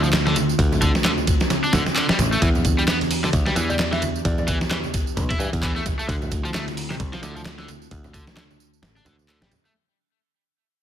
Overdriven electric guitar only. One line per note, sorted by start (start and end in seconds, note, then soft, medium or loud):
0.04 0.07 F3 medium
0.27 0.36 D3 medium
0.82 0.91 D3 loud
1.05 1.10 D3 medium
1.64 1.72 D4 medium
1.74 1.82 D3 loud
1.96 2.05 D3 medium
2.10 2.16 G3 loud
2.33 2.39 A3 medium
2.42 2.47 E3 medium
2.79 2.82 G3 medium
2.88 2.97 B3 medium
3.24 3.28 D3 medium
3.47 3.53 G3 medium
3.56 3.69 E3 loud
3.70 3.74 G3 medium
3.93 4.02 E3 medium
4.48 4.57 E3 loud
4.71 4.76 E3 medium
5.30 5.39 E4 medium
5.40 5.48 E3 loud
5.63 5.71 E3 medium
5.76 5.82 A3 loud
5.99 6.05 A3 medium
6.08 6.14 D3 medium
6.45 6.48 F3 medium
6.54 6.63 A3 medium
6.90 6.94 C3 medium
7.14 7.20 F3 medium
7.23 7.36 D3 loud
7.36 7.40 F3 medium
7.59 7.68 D3 medium
8.15 8.23 D3 loud
8.37 8.43 D3 medium
8.96 9.05 D4 medium
9.06 9.15 D3 loud
9.29 9.38 D3 medium
9.42 9.49 G3 loud
9.65 9.72 A3 medium